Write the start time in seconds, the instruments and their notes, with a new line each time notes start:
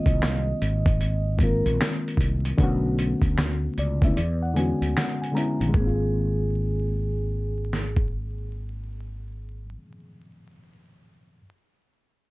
Already playing: reed electric piano D#3 G#3 A#3 C4 F4, vibraphone D#5
0.06 fretless electric bass C2, kick, closed hi-hat
0.22 finger snap, snare, closed hi-hat
0.61 fretless electric bass G#1, closed hi-hat
0.86 kick, closed hi-hat
1.01 closed hi-hat
1.38 reed electric piano D#3 G#3 A#3, vibraphone A#4, kick, closed hi-hat
1.42 reed electric piano C4 F4
1.66 fretless electric bass A#1, closed hi-hat
1.81 finger snap, snare, closed hi-hat
2.08 closed hi-hat
2.17 fretless electric bass C2, kick, closed hi-hat
2.45 closed hi-hat
2.58 fretless electric bass B1, reed electric piano D3 A3 B3, kick, closed hi-hat
2.62 reed electric piano C#4 F#4
2.99 closed hi-hat
3.22 fretless electric bass D2, kick, closed hi-hat
3.38 finger snap, snare, closed hi-hat
3.77 fretless electric bass C#2, reed electric piano D5, closed hi-hat
4.01 reed electric piano D3 A3 B3 E5, kick, closed hi-hat
4.06 reed electric piano C#4 E4
4.17 fretless electric bass E2, reed electric piano D5, closed hi-hat
4.42 reed electric piano F#5
4.54 reed electric piano D3 G#3 B3 G#5, closed hi-hat
4.58 reed electric piano C#4 F#4
4.81 fretless electric bass D2, closed hi-hat
4.97 reed electric piano F#5, finger snap, snare, closed hi-hat
5.22 reed electric piano G#5, closed hi-hat
5.32 reed electric piano D3 G#3 B3 A#5
5.37 reed electric piano C#4 E4, closed hi-hat
5.60 fretless electric bass A#1, reed electric piano D#3, closed hi-hat
5.69 reed electric piano G#3
5.74 fretless electric bass G#1, reed electric piano A#3, vibraphone G#4, kick
5.81 reed electric piano C4
5.87 reed electric piano F4
7.73 snare
7.96 kick